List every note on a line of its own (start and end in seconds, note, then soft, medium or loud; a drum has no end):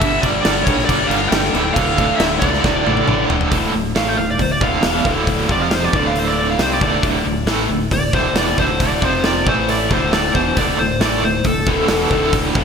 0.00 0.18 G1 loud
0.00 0.22 G2 medium
0.00 0.22 D3 loud
0.00 0.23 G3 loud
0.00 0.22 E5 loud
0.00 kick loud
0.00 crash medium
0.21 0.40 G1 loud
0.21 0.43 G2 medium
0.21 0.44 D3 loud
0.21 0.44 G3 loud
0.21 0.42 D5 medium
0.21 kick medium
0.21 crash medium
0.43 0.62 G1 loud
0.43 0.65 G2 medium
0.43 0.66 D3 loud
0.43 0.66 G3 medium
0.43 0.63 D5 medium
0.43 snare loud
0.43 crash medium
0.64 0.83 A#1 loud
0.64 0.87 G2 medium
0.64 0.87 D3 medium
0.64 0.88 G3 medium
0.64 0.85 C#5 medium
0.64 kick loud
0.64 crash medium
0.78 snare soft
0.85 1.09 G2 medium
0.85 1.10 D3 medium
0.85 1.09 D5 medium
0.85 kick medium
0.89 1.06 G1 loud
0.89 1.10 G3 loud
0.89 crash medium
1.07 1.27 G1 loud
1.07 1.31 G2 loud
1.07 1.31 D3 loud
1.07 1.29 F5 loud
1.07 crash medium
1.12 1.31 G3 loud
1.29 1.49 G1 medium
1.29 1.52 G2 medium
1.29 1.53 D3 loud
1.29 1.53 G3 loud
1.29 1.74 G5 loud
1.29 snare loud
1.29 crash medium
1.44 snare soft
1.53 1.71 D1 medium
1.53 1.74 D2 loud
1.53 1.75 A2 loud
1.53 1.75 D3 loud
1.53 crash medium
1.74 2.10 D1 loud
1.74 1.96 D2 loud
1.74 1.97 A2 loud
1.74 1.98 D3 loud
1.74 2.16 F5 loud
1.74 kick loud
1.74 crash medium
1.97 2.18 D2 medium
1.97 2.18 A2 medium
1.97 2.19 D3 loud
1.97 kick medium
1.97 crash medium
2.16 2.37 D1 medium
2.16 2.41 D2 medium
2.16 2.41 A2 medium
2.16 2.23 E5 medium
2.16 snare loud
2.16 crash medium
2.20 2.41 D3 medium
2.39 2.59 C#2 loud
2.39 2.62 D2 medium
2.39 2.62 A2 medium
2.39 2.63 D3 medium
2.39 3.24 D5 medium
2.39 kick loud
2.39 crash medium
2.54 snare soft
2.63 2.81 D1 medium
2.63 2.83 D2 medium
2.63 2.84 A2 loud
2.63 2.84 D3 medium
2.63 kick medium
2.63 snare medium
2.84 3.03 A1 medium
2.84 3.06 D2 loud
2.84 3.07 A2 loud
2.84 3.07 D3 loud
2.84 high tom medium
2.97 high tom medium
3.07 3.24 A1 medium
3.07 3.28 D2 loud
3.07 3.29 A2 loud
3.07 3.30 D3 loud
3.07 mid tom loud
3.29 3.46 D1 medium
3.29 3.50 D2 medium
3.29 3.50 A2 medium
3.29 3.51 D3 medium
3.29 floor tom loud
3.41 floor tom loud
3.52 3.72 D1 medium
3.52 3.72 D2 medium
3.52 3.73 A2 medium
3.52 3.74 D3 loud
3.52 kick loud
3.52 open hi-hat medium
3.73 3.94 D1 medium
3.73 3.91 D2 medium
3.73 3.91 A2 medium
3.96 4.16 A1 medium
3.96 4.17 A2 medium
3.96 4.17 E3 medium
3.96 4.18 A3 medium
3.96 4.08 F5 medium
3.96 snare loud
3.96 open hi-hat medium
4.08 4.17 G5 medium
4.17 4.38 D1 medium
4.17 4.36 D2 medium
4.17 4.36 A2 medium
4.17 4.28 F5 medium
4.31 4.42 D5 medium
4.39 4.60 D1 medium
4.39 4.57 D2 medium
4.39 4.57 A2 medium
4.39 4.51 C5 medium
4.39 kick medium
4.39 open hi-hat medium
4.52 4.63 D5 medium
4.61 4.81 D1 medium
4.61 4.83 D2 medium
4.61 4.83 A2 medium
4.61 4.83 D3 medium
4.61 5.05 F5 loud
4.61 kick loud
4.83 5.04 E1 medium
4.83 5.05 E2 medium
4.83 5.05 B2 medium
4.83 5.05 E3 loud
4.83 snare loud
4.83 open hi-hat medium
5.05 5.46 D1 medium
5.05 5.49 D2 medium
5.05 5.49 A2 medium
5.05 5.50 D3 loud
5.05 kick loud
5.27 kick medium
5.27 open hi-hat medium
5.49 5.90 F1 loud
5.49 5.92 F2 medium
5.49 5.93 C3 loud
5.49 5.93 F3 medium
5.49 5.61 D5 medium
5.49 kick medium
5.61 5.71 F5 medium
5.71 5.84 C5 medium
5.71 snare loud
5.71 open hi-hat medium
5.83 5.94 D5 medium
5.83 snare soft
5.93 6.55 D1 loud
5.93 6.58 D2 medium
5.93 6.59 A2 medium
5.93 6.59 D3 medium
5.93 6.05 D5 medium
5.93 kick loud
6.07 6.16 F5 medium
6.16 6.28 C5 medium
6.16 open hi-hat medium
6.28 6.38 D5 medium
6.39 6.49 D5 medium
6.51 6.60 F5 loud
6.59 6.79 C2 medium
6.59 6.80 C3 loud
6.59 6.81 G3 loud
6.59 6.81 C4 loud
6.59 6.72 C5 medium
6.59 snare loud
6.59 open hi-hat medium
6.72 6.82 D5 loud
6.80 7.02 D1 medium
6.80 7.02 D2 loud
6.80 7.02 A2 loud
6.80 7.03 D3 loud
6.80 7.04 D5 loud
6.80 kick loud
7.03 7.24 D1 medium
7.03 7.24 D2 loud
7.03 7.23 A2 loud
7.03 7.25 D3 loud
7.03 kick loud
7.03 open hi-hat medium
7.24 7.45 D1 medium
7.24 7.43 D2 medium
7.24 7.43 A2 medium
7.46 7.67 A1 medium
7.46 7.69 A2 medium
7.46 7.69 E3 loud
7.46 7.69 A3 loud
7.46 snare loud
7.46 open hi-hat medium
7.69 7.90 D1 medium
7.69 7.87 D2 medium
7.69 7.88 A2 medium
7.91 8.12 D1 medium
7.91 8.09 D2 medium
7.91 8.10 A2 medium
7.91 8.14 D5 loud
7.91 kick medium
7.91 open hi-hat medium
8.13 8.32 D1 medium
8.13 8.35 D2 loud
8.13 8.36 A2 medium
8.13 8.36 D3 loud
8.13 8.36 C5 medium
8.13 kick loud
8.33 8.55 E1 medium
8.33 8.57 E2 loud
8.33 8.58 B2 loud
8.33 8.58 E3 loud
8.33 snare loud
8.33 open hi-hat medium
8.38 8.59 D5 medium
8.47 snare soft
8.58 8.99 D1 medium
8.58 9.01 D2 loud
8.58 9.02 A2 medium
8.58 9.02 D3 loud
8.58 8.80 C5 medium
8.58 kick loud
8.80 9.03 D5 loud
8.80 kick loud
8.80 open hi-hat medium
9.02 9.43 F1 medium
9.02 9.46 F2 medium
9.02 9.46 C3 medium
9.02 9.46 F3 loud
9.02 9.24 C5 medium
9.02 kick loud
9.24 9.46 D5 medium
9.24 snare medium
9.24 open hi-hat soft
9.46 9.87 A1 loud
9.46 9.91 A2 medium
9.46 9.91 E3 medium
9.46 9.91 A3 medium
9.46 9.69 C5 medium
9.46 kick loud
9.69 9.91 D5 loud
9.69 open hi-hat medium
9.90 10.32 D1 medium
9.90 10.35 D2 medium
9.90 10.35 A2 medium
9.90 10.36 D3 medium
9.90 10.13 C5 loud
9.90 kick medium
10.13 10.34 D5 medium
10.13 snare loud
10.13 open hi-hat medium
10.24 snare soft
10.35 10.55 E1 medium
10.35 10.57 E2 medium
10.35 10.57 B2 loud
10.35 10.57 E3 loud
10.35 10.56 C5 medium
10.35 kick medium
10.57 10.77 D1 medium
10.57 10.79 D2 loud
10.57 10.79 A2 loud
10.57 10.79 D3 loud
10.57 10.79 D5 loud
10.57 kick loud
10.57 open hi-hat medium
10.79 10.99 D1 medium
10.79 10.97 D2 medium
10.79 10.98 A2 medium
10.79 11.01 C5 medium
10.99 11.21 A1 medium
10.99 11.23 A2 medium
10.99 11.23 E3 loud
10.99 11.24 A3 loud
10.99 11.23 D5 medium
10.99 snare loud
10.99 open hi-hat medium
11.22 11.43 D1 medium
11.22 11.41 D2 medium
11.22 11.41 A2 medium
11.22 11.45 C5 medium
11.44 11.66 D1 medium
11.44 11.63 D2 medium
11.44 11.63 A2 medium
11.44 12.31 A4 medium
11.44 kick medium
11.44 open hi-hat medium
11.67 11.88 D1 medium
11.67 11.88 D2 medium
11.67 11.88 A2 medium
11.67 11.89 D3 loud
11.67 kick loud
11.88 12.10 E1 medium
11.88 12.10 E2 medium
11.88 12.11 B2 loud
11.88 12.11 E3 loud
11.88 snare loud
11.88 open hi-hat medium
12.00 snare soft
12.10 12.52 D1 medium
12.10 12.55 D2 loud
12.10 12.55 A2 medium
12.10 12.55 D3 loud
12.10 kick medium
12.33 kick loud
12.33 open hi-hat medium
12.55 12.64 F1 loud
12.55 12.64 F2 medium
12.55 12.64 C3 medium
12.55 12.64 F3 loud
12.55 kick loud